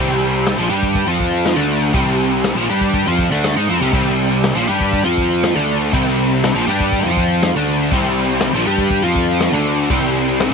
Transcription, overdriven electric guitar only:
0.00 0.56 C3 medium
0.00 0.57 G3 medium
0.00 0.57 C4 medium
0.58 0.69 A#2 medium
0.58 0.69 F3 medium
0.70 1.06 G3 medium
0.70 1.07 D4 medium
0.70 1.07 G4 medium
1.07 1.56 F3 medium
1.07 1.56 C4 loud
1.07 1.57 F4 loud
1.56 1.93 D3 medium
1.56 1.93 A3 loud
1.56 1.94 D4 medium
1.94 2.55 C3 medium
1.94 2.56 G3 loud
1.94 2.56 C4 medium
2.55 2.68 A#2 medium
2.55 2.68 F3 medium
2.69 3.06 G3 medium
2.69 3.06 D4 medium
2.69 3.06 G4 medium
3.07 3.31 F3 medium
3.07 3.31 C4 medium
3.07 3.31 F4 loud
3.31 3.55 D3 medium
3.31 3.56 A3 medium
3.31 3.56 D4 medium
3.57 3.68 G#3 medium
3.57 3.68 D#4 medium
3.69 3.80 F3 medium
3.69 3.81 C4 medium
3.81 3.92 C3 medium
3.81 3.92 G3 loud
3.93 4.54 C3 medium
3.93 4.55 G3 medium
3.93 4.55 C4 medium
4.55 4.67 A#2 medium
4.55 4.67 F3 medium
4.68 5.04 G3 medium
4.68 5.04 D4 medium
4.68 5.05 G4 medium
5.04 5.54 F3 medium
5.04 5.54 C4 medium
5.04 5.54 F4 loud
5.55 5.92 D3 medium
5.55 5.92 A3 medium
5.55 5.92 D4 loud
5.92 6.54 C3 loud
5.92 6.54 G3 medium
5.92 6.54 C4 medium
6.55 6.66 A#2 medium
6.55 6.67 F3 loud
6.67 7.05 G3 medium
6.67 7.06 D4 medium
6.67 7.04 G4 medium
7.05 7.54 F3 medium
7.05 7.54 C4 medium
7.05 7.54 F4 loud
7.56 7.91 D3 medium
7.56 7.91 A3 medium
7.56 7.92 D4 medium
7.92 8.53 C3 medium
7.92 8.53 G3 medium
7.92 8.53 C4 medium
8.54 8.65 A#2 medium
8.54 8.65 F3 loud
8.66 9.02 G3 medium
8.66 9.02 D4 medium
8.66 9.03 G4 medium
9.03 9.52 F3 loud
9.03 9.52 C4 medium
9.03 9.52 F4 loud
9.52 9.89 D3 medium
9.52 9.89 A3 medium
9.52 9.89 D4 medium
9.90 10.51 C3 medium
9.90 10.51 G3 medium
9.90 10.51 C4 loud

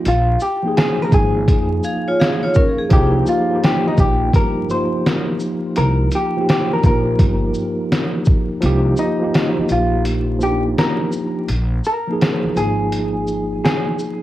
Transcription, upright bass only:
0.06 0.35 A#1 loud
1.13 1.42 G#1 loud
1.48 1.78 F2 medium
2.91 3.21 C2 loud
3.99 4.28 A#1 medium
4.34 4.64 G1 medium
5.78 6.07 C2 loud
6.84 7.14 A#1 loud
7.20 7.49 G1 medium
8.63 8.93 C2 loud
9.58 muted upright bass stroke soft
9.71 10.73 A#1 medium
11.49 11.78 A#1 loud
12.44 muted upright bass stroke soft
12.56 13.59 G#1 medium

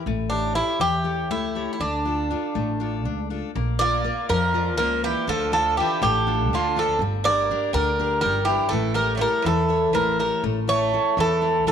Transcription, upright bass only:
0.06 0.58 A1 medium
0.80 1.30 E2 medium
1.30 1.65 C#2 medium
1.80 2.32 D2 medium
2.55 3.06 A1 medium
3.06 3.40 C#2 medium
3.55 4.07 A#1 loud
4.29 4.78 F2 loud
4.78 5.13 C#2 medium
5.27 5.79 D2 loud
6.02 6.50 A1 loud
6.50 6.84 D2 medium
6.99 7.51 G1 loud
7.74 8.24 D2 loud
8.23 8.57 G1 medium
8.71 9.23 A1 loud
9.45 9.94 E2 loud
9.94 10.28 A1 medium
10.44 10.95 A1 loud
11.17 11.65 E2 loud
11.65 11.72 A1 medium

